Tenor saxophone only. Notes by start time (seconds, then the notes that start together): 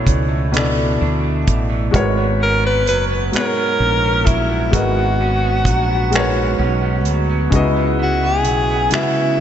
2.43 A#4
2.66 B4
2.89 B4
3.35 A#4
4.26 E4
4.74 F#4
8.02 F#4
8.25 G#4
8.95 E4